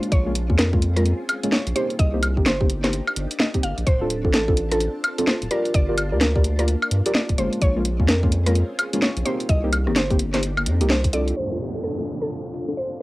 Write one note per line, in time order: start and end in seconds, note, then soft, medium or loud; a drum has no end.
0.00 0.23 G#3 medium
0.00 0.23 A#3 medium
0.00 0.23 C#4 medium
0.00 0.23 F4 medium
0.00 1.95 F4 medium
0.00 closed hi-hat soft
0.12 0.51 A#1 medium
0.12 1.97 C4 medium
0.12 1.97 C#4 medium
0.12 1.97 G#4 medium
0.12 0.33 C#5 loud
0.12 kick loud
0.12 closed hi-hat medium
0.26 0.32 G#3 medium
0.26 0.32 A#3 medium
0.26 0.32 C#4 medium
0.26 0.32 F4 loud
0.35 closed hi-hat loud
0.50 1.13 F2 medium
0.50 0.56 G#3 medium
0.50 0.56 A#3 medium
0.50 0.56 C#4 medium
0.50 0.56 F4 medium
0.50 kick medium
0.58 0.76 A#4 loud
0.58 snare loud
0.58 closed hi-hat medium
0.73 0.79 G#3 loud
0.73 0.79 A#3 medium
0.73 0.79 C#4 medium
0.73 0.79 F4 loud
0.73 kick loud
0.82 closed hi-hat medium
0.96 1.02 G#3 medium
0.96 1.02 A#3 medium
0.96 1.02 C#4 medium
0.96 1.02 F4 medium
0.96 1.04 A#4 medium
0.96 cross-stick soft
0.96 closed hi-hat medium
1.05 closed hi-hat medium
1.29 closed hi-hat loud
1.29 high woodblock medium
1.43 1.49 G#3 medium
1.43 1.49 A#3 medium
1.43 1.49 C#4 medium
1.43 1.49 F4 loud
1.43 closed hi-hat medium
1.52 1.65 C#5 medium
1.52 snare loud
1.67 1.73 A#1 loud
1.67 closed hi-hat soft
1.76 2.10 A#3 medium
1.76 2.10 C4 medium
1.76 2.10 D#4 medium
1.76 2.10 G4 loud
1.76 1.88 C5 medium
1.76 closed hi-hat medium
1.90 closed hi-hat soft
1.99 2.39 C2 loud
1.99 3.85 A#3 medium
1.99 7.58 D4 medium
1.99 3.85 D#4 medium
1.99 3.85 G4 medium
1.99 2.20 D#5 loud
1.99 kick loud
1.99 closed hi-hat medium
2.14 2.20 A#3 medium
2.14 2.20 C4 medium
2.14 2.20 D#4 medium
2.14 2.20 G4 loud
2.23 closed hi-hat loud
2.23 high woodblock medium
2.37 3.01 G1 medium
2.37 2.43 A#3 medium
2.37 2.43 C4 medium
2.37 2.43 D#4 medium
2.37 2.43 G4 medium
2.37 kick medium
2.46 2.63 C5 loud
2.46 snare loud
2.46 closed hi-hat medium
2.61 2.67 A#3 medium
2.61 2.67 C4 medium
2.61 2.67 D#4 medium
2.61 2.67 G4 loud
2.61 kick loud
2.70 closed hi-hat medium
2.84 2.90 A#3 medium
2.84 2.90 C4 medium
2.84 2.90 D#4 medium
2.84 2.90 G4 medium
2.84 2.92 C5 medium
2.84 cross-stick soft
2.84 snare medium
2.84 closed hi-hat medium
2.93 closed hi-hat medium
3.08 high woodblock medium
3.16 3.27 G1 medium
3.16 closed hi-hat loud
3.31 closed hi-hat medium
3.40 3.52 D#5 medium
3.40 snare loud
3.54 3.64 A#3 medium
3.54 3.64 C4 medium
3.54 3.64 D#4 medium
3.54 3.64 G4 medium
3.54 kick medium
3.54 closed hi-hat medium
3.63 3.74 G1 medium
3.63 3.76 F5 medium
3.63 closed hi-hat medium
3.78 3.84 A#1 medium
3.78 closed hi-hat soft
3.87 4.26 D1 loud
3.87 5.49 C4 medium
3.87 7.58 F4 medium
3.87 4.08 C5 loud
3.87 7.58 A5 medium
3.87 kick loud
3.87 closed hi-hat medium
4.01 4.07 C4 medium
4.01 4.07 D4 medium
4.01 4.07 F4 medium
4.01 4.07 A4 loud
4.10 closed hi-hat loud
4.25 4.88 A1 loud
4.25 4.31 C4 medium
4.25 4.31 D4 medium
4.25 4.31 F4 medium
4.25 4.31 A4 medium
4.25 kick medium
4.34 4.51 A4 loud
4.34 snare loud
4.34 closed hi-hat medium
4.48 4.54 C4 loud
4.48 4.54 D4 medium
4.48 4.54 F4 medium
4.48 4.54 A4 loud
4.48 kick loud
4.57 closed hi-hat medium
4.71 4.77 C4 medium
4.71 4.77 D4 medium
4.71 4.77 F4 medium
4.71 4.77 A4 medium
4.71 4.79 A4 medium
4.71 cross-stick soft
4.71 closed hi-hat medium
4.80 closed hi-hat medium
5.04 closed hi-hat loud
5.04 high woodblock medium
5.18 5.24 C4 loud
5.18 5.24 D4 medium
5.18 5.24 F4 medium
5.18 5.24 A4 loud
5.18 closed hi-hat medium
5.27 5.40 C5 medium
5.27 snare loud
5.42 5.48 D1 medium
5.42 closed hi-hat medium
5.51 7.60 A#3 medium
5.51 5.85 F4 medium
5.51 5.85 G4 medium
5.51 5.85 A#4 medium
5.51 5.63 A#4 medium
5.51 5.85 D5 medium
5.51 closed hi-hat medium
5.65 closed hi-hat soft
5.74 6.14 G1 loud
5.74 5.95 D5 loud
5.74 kick loud
5.74 closed hi-hat medium
5.89 5.95 F4 medium
5.89 5.95 G4 medium
5.89 5.95 A#4 medium
5.89 5.95 D5 medium
5.98 closed hi-hat loud
5.98 high woodblock medium
6.12 6.76 D2 loud
6.12 6.18 F4 medium
6.12 6.18 G4 medium
6.12 6.18 A#4 medium
6.12 6.18 D5 medium
6.21 6.38 A#4 loud
6.21 snare loud
6.21 closed hi-hat medium
6.36 6.42 F4 medium
6.36 6.42 G4 medium
6.36 6.42 A#4 medium
6.36 6.42 D5 loud
6.36 kick loud
6.44 closed hi-hat medium
6.59 6.65 F4 medium
6.59 6.65 G4 medium
6.59 6.67 A#4 medium
6.59 6.65 A#4 medium
6.59 6.65 D5 medium
6.59 cross-stick soft
6.59 closed hi-hat medium
6.68 closed hi-hat medium
6.82 high woodblock medium
6.91 7.02 G2 loud
6.91 closed hi-hat loud
7.06 7.12 F4 loud
7.06 7.12 G4 medium
7.06 7.12 A#4 medium
7.06 7.12 D5 loud
7.06 closed hi-hat medium
7.15 7.27 D5 medium
7.15 snare loud
7.29 7.36 D1 medium
7.29 kick medium
7.29 closed hi-hat medium
7.38 7.49 G1 medium
7.38 7.73 G#3 medium
7.38 7.73 A#3 medium
7.38 7.73 C#4 medium
7.38 7.73 F4 medium
7.38 7.51 C5 medium
7.38 closed hi-hat medium
7.53 closed hi-hat soft
7.62 8.01 A#1 loud
7.62 9.47 C4 medium
7.62 9.47 C#4 medium
7.62 9.47 F4 medium
7.62 9.47 G#4 medium
7.62 7.83 C#5 loud
7.62 kick loud
7.62 closed hi-hat medium
7.76 7.82 G#3 medium
7.76 7.82 A#3 medium
7.76 7.82 C#4 medium
7.76 7.82 F4 loud
7.85 closed hi-hat loud
8.00 8.63 F2 loud
8.00 8.06 G#3 medium
8.00 8.06 A#3 medium
8.00 8.06 C#4 medium
8.00 8.06 F4 medium
8.00 kick medium
8.08 8.26 A#4 medium
8.08 snare loud
8.08 closed hi-hat medium
8.23 8.29 G#3 loud
8.23 8.29 A#3 medium
8.23 8.29 C#4 medium
8.23 8.29 F4 loud
8.23 kick medium
8.32 closed hi-hat medium
8.46 8.53 G#3 medium
8.46 8.53 A#3 medium
8.46 8.53 C#4 medium
8.46 8.53 F4 medium
8.46 8.54 A#4 medium
8.46 cross-stick soft
8.46 closed hi-hat medium
8.55 closed hi-hat medium
8.79 closed hi-hat loud
8.79 high woodblock medium
8.93 8.99 G#3 medium
8.93 8.99 A#3 medium
8.93 8.99 C#4 medium
8.93 8.99 F4 loud
8.93 closed hi-hat medium
9.02 9.15 C#5 medium
9.02 snare loud
9.17 9.23 A#1 medium
9.17 closed hi-hat medium
9.25 9.60 A#3 medium
9.25 9.60 C4 medium
9.25 9.60 D#4 medium
9.25 9.60 G4 medium
9.25 9.38 C5 medium
9.25 closed hi-hat medium
9.40 closed hi-hat soft
9.49 9.89 C2 loud
9.49 11.35 A#3 medium
9.49 11.35 D4 medium
9.49 11.35 D#4 medium
9.49 11.35 G4 medium
9.49 9.70 D#5 loud
9.49 kick loud
9.49 closed hi-hat medium
9.64 9.70 A#3 medium
9.64 9.70 C4 medium
9.64 9.70 D#4 medium
9.64 9.70 G4 loud
9.73 closed hi-hat loud
9.73 high woodblock medium
9.87 10.68 G1 loud
9.87 9.93 A#3 medium
9.87 9.93 C4 medium
9.87 9.93 D#4 medium
9.87 9.93 G4 medium
9.87 cross-stick medium
9.96 10.13 C5 loud
9.96 snare loud
9.96 closed hi-hat medium
10.10 10.16 A#3 loud
10.10 10.16 C4 medium
10.10 10.17 D#4 medium
10.10 10.17 G4 loud
10.10 kick loud
10.10 closed hi-hat soft
10.19 closed hi-hat medium
10.34 10.40 A#3 medium
10.34 10.40 C4 medium
10.34 10.40 D#4 medium
10.34 10.40 G4 medium
10.34 10.42 C5 medium
10.34 cross-stick soft
10.34 snare medium
10.34 closed hi-hat medium
10.43 closed hi-hat medium
10.57 high woodblock medium
10.66 10.82 F2 medium
10.66 closed hi-hat loud
10.81 11.33 C2 loud
10.81 10.87 A#3 loud
10.81 10.87 C4 medium
10.81 10.87 D#4 medium
10.81 10.87 G4 loud
10.81 closed hi-hat medium
10.90 11.02 C5 medium
10.90 snare loud
11.04 kick medium
11.04 closed hi-hat medium
11.13 11.48 C4 medium
11.13 11.48 D4 medium
11.13 11.48 F4 medium
11.13 11.48 A4 medium
11.13 11.26 D5 medium
11.13 closed hi-hat loud
11.28 closed hi-hat soft
11.36 12.99 C4 medium
11.36 13.02 D4 medium
11.36 13.02 F4 medium
11.36 12.99 A4 medium
11.36 11.58 C5 medium
11.36 closed hi-hat medium
11.36 downlifter medium
11.51 11.57 C4 medium
11.51 11.57 D4 medium
11.51 11.57 F4 medium
11.51 11.57 A4 medium
11.60 closed hi-hat medium
11.75 11.81 C4 medium
11.75 11.81 D4 medium
11.75 11.81 F4 medium
11.75 11.81 A4 medium
11.75 closed hi-hat medium
11.84 12.01 A4 medium
11.84 closed hi-hat medium
11.98 12.04 C4 medium
11.98 12.04 D4 medium
11.98 12.04 F4 medium
11.98 12.04 A4 loud
12.07 closed hi-hat medium
12.21 12.27 C4 medium
12.21 12.27 D4 medium
12.21 12.27 F4 medium
12.21 12.27 A4 medium
12.21 12.29 A4 medium
12.30 closed hi-hat medium
12.54 closed hi-hat loud
12.68 12.74 C4 medium
12.68 12.74 D4 medium
12.68 12.74 F4 medium
12.68 12.74 A4 medium
12.68 closed hi-hat medium
12.77 12.90 C5 medium